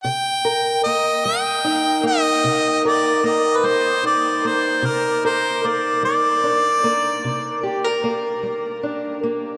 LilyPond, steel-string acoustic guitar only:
\new Staff \with { instrumentName = "Steel-string acoustic guitar" } { \time 12/8 \key c \minor \tempo 4. = 50 << { r8 bes'8 bes4 ees'8 bes4 bes'8 bes4 ees'8 bes8~ | bes8 bes'8 bes4 d'8 bes4 g'16 bes'16 bes4 d'8 bes8 | } \\ { c4 r8 g4 r8 c4 r8 g4 r8 | c4 r8 g4 r8 c4 r8 g4 r8 | } >> }